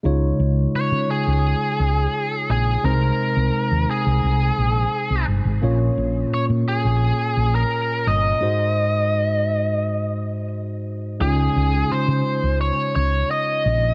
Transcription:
X:1
M:4/4
L:1/16
Q:1/4=86
K:Dblyd
V:1 name="Lead electric guitar"
z4 d2 A8 A2 | B6 A8 z2 | z4 d2 A4- A B3 e2- | e12 z4 |
A4 c4 d2 d2 e4 |]
V:2 name="Tine electric piano"
[A,EFd]16 | [A,CEc]16 | [B,DFd]16 | [A,E_Gc]16 |
[A,DEF]16 |]
V:3 name="Tine electric piano" clef=bass
D,6 z8 z2 | C,6 z8 z2 | B,,6 z8 z2 | A,,6 z8 z2 |
D,6 z8 z2 |]
V:4 name="Fretless electric bass" clef=bass
D,,2 D,,2 z D, z D,,2 z D,,2 z2 B,,,2 | C,,2 z C,, z E,, z C,, C,,2 B,,,2 z C,, G,,, A,,, | B,,,2 B,,,2 z B,, z B,,,2 z B,,,2 z2 G,,,2 | z16 |
D,,2 D,,2 z D, z D,,2 z D,,2 z2 B,,,2 |]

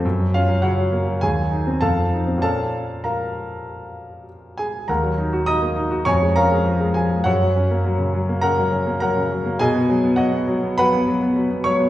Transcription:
X:1
M:4/4
L:1/16
Q:1/4=101
K:Bbm
V:1 name="Grand piano"
z2 [Ff]2 [Gdg]4 [Aa]4 [=Af=a]4 | [=Af=a]4 [Bfb]8 z2 [_A_a]2 | [K:Ebm] [Bgb]4 [ebe']4 [dad']2 [Bfb]4 [Aa]2 | [Gdg]8 [Bgb]4 [Bgb]2 z2 |
[A^da]4 [^Fd^f]4 [=Bf=b]6 [_dd']2 |]
V:2 name="Grand piano" clef=bass
G,, G, D G, D, G, B, G, E,, G, E C F,, F, E C | [B,,F,B,D]16 | [K:Ebm] E,, G, E G E B, E G F,, A, D A, F, A, F, A, | G,, G, D B, G, D, G, B, D, G, D B, G, D, G, B, |
=B,, =B, ^F, B, F, B, F, B, F, B, F, B, F, B, F, B, |]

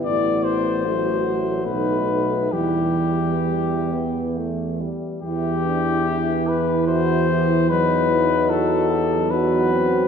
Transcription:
X:1
M:3/4
L:1/8
Q:1/4=73
K:Em
V:1 name="Cornet"
d c3 B2 | G4 z2 | G3 B c2 | B2 A2 B2 |]
V:2 name="French horn section"
E2 F2 ^D2 | E4- E z | E D E2 F G | ^D E F G F2 |]
V:3 name="Euphonium"
B,2 A, A,3 | G,2 G, B, A, G, | E6 | ^D4 D C |]
V:4 name="Trombone" clef=bass
G, z F,4 | E,4- E, z | E,6 | F,4 F,2 |]
V:5 name="Tuba" clef=bass
A,,,4 B,,,2 | E,,4- E,, z | E,,6- | E,,6 |]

